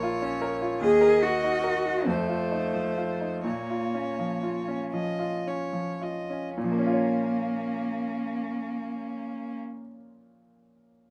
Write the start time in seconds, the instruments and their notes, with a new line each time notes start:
Already playing: grand piano A#1 A#4, violin C#5
0.03 grand piano F4
0.22 grand piano C#4
0.42 grand piano A#4
0.61 grand piano F4
0.80 grand piano D#2, cello G#4, violin D#5
1.01 grand piano A#4
1.22 cello F#4, grand piano F#4
1.44 grand piano D#4
1.64 grand piano A#4
1.86 grand piano F#4
2.06 grand piano F2, cello A3, violin C5
2.28 grand piano F4
2.51 grand piano D#4
2.74 grand piano F3
2.97 grand piano F4
3.21 grand piano D#4
3.45 grand piano A#2, cello A#3, violin C#5
3.70 grand piano F4
3.95 grand piano C#4
4.20 grand piano F3
4.43 grand piano F4
4.68 grand piano C#4
4.93 grand piano F3, violin D#5
5.19 grand piano F4
5.47 grand piano C#4, violin C#5
5.73 grand piano F3
6.01 grand piano F4, violin D#5
6.30 grand piano C#4
6.56 grand piano A#2, cello A#3, violin C#4
6.64 grand piano F3
6.72 grand piano A#3
6.79 grand piano C#4
6.86 grand piano F4
6.93 grand piano C#5